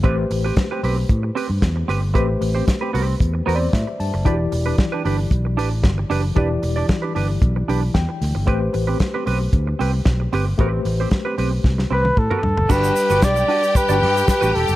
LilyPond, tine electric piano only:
\new Staff \with { instrumentName = "Tine electric piano" } { \time 4/4 \key a \dorian \tempo 4 = 114 << { r1 | r2 \tuplet 3/2 { r8. c''16 d''8 } e''8 a''8 | r1 | r2. g''4 |
r1 | r1 | r1 | } \\ { <a g' b' c''>1 | <a g' b' c''>1 | <e e' fis' g' d''>1 | <e e' g' d''>1 |
<a g' b' c''>1 | <a g' b' c''>1 | <g d' g' b'>1 | } >> }